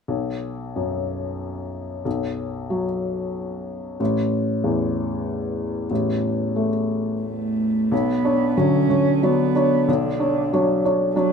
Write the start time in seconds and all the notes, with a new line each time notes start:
0.08 B1
0.76 F#2
2.05 B1
2.70 F#3
4.00 A1
4.64 E2
5.91 A1
6.56 A3
7.22 A3
7.92 B1 B3
8.25 D4 C#5
8.57 D3 F#3 C#4 C#5
8.90 D3 C#5
9.23 F#3 B3 D4 C#5
9.56 D4 C#5
9.88 B1 D3
10.20 D4 C#5
10.53 F#3 D4 C#5
10.85 D4 C#5
11.15 F#3 D4 C#5